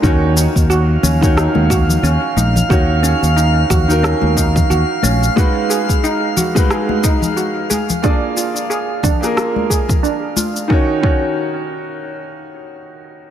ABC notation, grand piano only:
X:1
M:4/4
L:1/16
Q:"Swing 16ths" 1/4=90
K:Ebm
V:1 name="Grand piano"
[E,EGd]6- [E,EGd] [E,EGd]8- [E,EGd] | [E,EGd]6- [E,EGd] [E,EGB]8- [E,EGB] | [A,EGc]6- [A,EGc] [A,EGc]6- [A,EGc] z2 | [B,FA=d]6- [B,FAd] [B,FAB]8- [B,FAB] |
[E,EGd] z [E,EGd]12- [E,EGd]2 |]